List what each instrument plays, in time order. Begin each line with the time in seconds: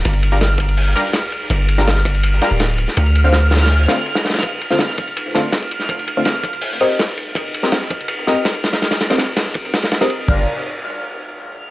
Already playing: synth texture F6
0.05 808-style bass G1, kick, ride
0.13 ride
0.23 ride
0.32 synth stab G3 D4 F4 A#4
0.41 snare, ride
0.58 kick, ride
0.69 ride
0.77 open hi-hat
0.96 synth stab G3 D4 F4 A#4, ride
1.13 snare, ride
1.32 ride
1.50 808-style bass G1, kick, ride
1.68 ride
1.78 synth stab G3 D4 F4 A#4, snare
1.87 snare, ride
1.96 snare
2.05 kick, ride
2.14 ride
2.23 ride
2.42 synth stab G3 D4 F4 A#4, snare, ride
2.51 808-style bass D1
2.60 snare, ride
2.69 ride
2.78 ride
2.88 snare
2.97 808-style bass D2, kick, ride
3.06 ride
3.15 ride
3.24 synth stab D3 A3 C4 F4
3.33 snare, ride
3.51 snare, ride
3.56 snare, ride
3.61 snare, ride
3.65 snare, ride
3.69 open hi-hat
3.88 synth stab D3 A3 C4 F4, snare, ride
3.98 ride
4.06 ride
4.15 snare, ride
4.25 snare, ride
4.30 snare, ride
4.34 snare, ride
4.39 snare, ride
4.43 kick, ride
4.61 ride
4.71 synth stab D3 A3 C4 F4, snare
4.79 snare, ride
4.89 snare
4.98 kick, ride
5.07 ride
5.17 ride
5.34 synth stab D3 A3 C4 F4, snare, ride
5.52 snare, ride
5.62 ride
5.71 ride
5.79 snare
5.89 kick, ride
5.99 ride
6.08 ride
6.17 synth stab D3 A3 C4 F4
6.25 snare, ride
6.44 kick, ride
6.53 ride
6.61 open hi-hat
6.80 synth stab C4 G4 A#4 D#5, ride
6.99 snare, ride
7.17 ride
7.35 kick, ride
7.54 ride
7.63 synth stab C4 G4 A#4 D#5, snare
7.72 snare, ride
7.81 snare
7.90 kick, ride
8.00 ride
8.08 ride
8.27 synth stab C4 G4 A#4 D#5, snare, ride
8.45 snare, ride
8.55 ride
8.64 snare, ride
8.73 snare, ride
8.82 snare, ride
8.91 snare, ride
9.01 snare, ride
9.10 synth stab C4 G4 A#4 D#5, snare, ride
9.18 snare, ride
9.37 snare, ride
9.46 snare
9.54 kick, ride
9.65 ride
9.74 snare, ride
9.82 snare, ride
9.91 snare, ride
10.01 synth stab C4 G4 A#4 D#5, snare, ride
10.10 ride
10.28 808-style bass G1, synth stab G3 D4 F4 A#4, kick, crash